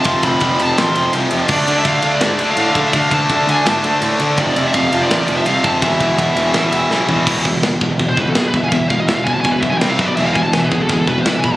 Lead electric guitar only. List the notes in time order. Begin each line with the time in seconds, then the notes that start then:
0.06 C6
0.24 B5
0.62 A5
0.78 C6
1.53 D5
1.79 E5
1.88 F5
2.15 D5
2.51 F5
2.60 F5
2.87 E5
2.96 F5
3.14 A5
3.50 G#5
3.67 A5
4.40 D5
4.67 E5
4.75 F5
5.02 D5
5.37 E5
5.46 F5
5.64 A5
5.82 E5
8.09 C5
8.20 B4
8.29 A4
8.37 G#4
8.48 B4
8.56 E5
8.64 G#5
8.68 F5
8.73 E5
8.89 F5
9.00 D#5
9.07 E5
9.15 F5
9.24 G#5
9.33 A5
9.40 G#5
9.51 B4
9.60 E5
9.70 G#5
9.78 G5
9.89 F5
10.00 E5
10.07 D5
10.16 E5
10.26 F5
10.33 G#5
10.43 A5
10.53 G#5
10.59 E5
10.64 B4
10.70 G#4
10.82 A4
10.91 G#4
11.00 A4
11.09 B4
11.21 C5
11.29 B4
11.34 E5 G#5
11.45 B5
11.53 A5